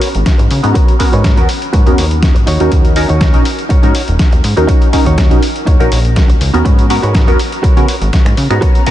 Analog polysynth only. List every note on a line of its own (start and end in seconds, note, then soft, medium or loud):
0.63 0.97 B3 medium
0.63 0.97 C#4 medium
0.63 0.97 F#4 medium
0.63 0.97 A#5 loud
0.99 1.11 B3 medium
0.99 1.11 C#4 medium
0.99 1.11 F#4 medium
0.99 1.11 A#4 loud
1.37 1.47 B3 loud
1.37 1.47 C#4 medium
1.37 1.47 F#4 medium
1.37 1.48 A#4 loud
1.86 1.96 B3 medium
1.86 1.96 C#4 medium
1.86 1.96 F#4 medium
1.86 1.97 A#4 loud
2.60 2.94 C#4 medium
2.60 2.94 D#4 medium
2.60 2.94 F#4 medium
2.60 2.94 A#4 loud
2.96 3.07 C#4 loud
2.96 3.08 D#4 medium
2.96 3.08 F#4 medium
2.96 3.08 A#4 loud
3.34 3.44 C#4 loud
3.34 3.44 D#4 medium
3.34 3.44 F#4 medium
3.34 3.44 A#4 loud
3.83 3.93 C#4 loud
3.83 3.93 D#4 medium
3.83 3.93 F#4 medium
3.83 3.93 A#4 loud
4.56 4.90 C#4 medium
4.56 4.90 D#4 medium
4.56 4.90 F#4 medium
4.56 4.91 A#4 loud
4.93 5.04 C#4 medium
4.93 5.04 D#4 medium
4.93 5.04 F#4 medium
4.93 5.05 A#4 loud
5.31 5.41 C#4 loud
5.31 5.41 D#4 medium
5.31 5.41 F#4 medium
5.31 5.41 A#4 loud
5.80 5.90 C#4 medium
5.80 5.90 D#4 medium
5.80 5.90 F#4 medium
5.80 5.90 A#4 loud
6.53 6.87 B3 medium
6.53 6.87 C#4 medium
6.53 6.87 F#4 medium
6.53 6.87 A#4 loud
6.90 7.01 B3 loud
6.90 7.01 C#4 medium
6.90 7.01 F#4 medium
6.90 7.01 A#4 loud
7.27 7.37 B3 loud
7.27 7.38 C#4 medium
7.27 7.38 F#4 medium
7.27 7.38 A#4 loud
7.76 7.87 B3 medium
7.76 7.87 C#4 medium
7.76 7.87 F#4 medium
7.76 7.87 A#4 loud
8.50 8.84 B3 loud
8.50 8.84 C#4 medium
8.50 8.84 F#4 medium
8.50 8.84 A#5 loud
8.86 8.91 B3 medium
8.86 8.91 C#4 medium
8.86 8.91 F#4 medium
8.86 8.91 A#4 loud